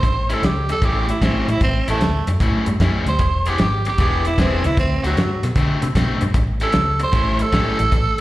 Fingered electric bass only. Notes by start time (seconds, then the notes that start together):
0.03 A1
0.42 C#2
0.82 A1
1.21 A1
1.48 A1
1.61 A1
1.88 A1
2.01 D2
2.27 F#2
2.40 A2
2.66 G2
2.80 F#2
3.06 D2
3.19 E1
3.59 G#1
3.99 E1
4.38 E1
4.65 C#2
4.77 D2
5.04 D2
5.17 G2
5.43 B2
5.56 D3
5.83 C3
5.95 B2
6.22 G2
6.34 A1
6.75 C#2
7.13 A1
7.52 A1
7.80 A1
7.92 A1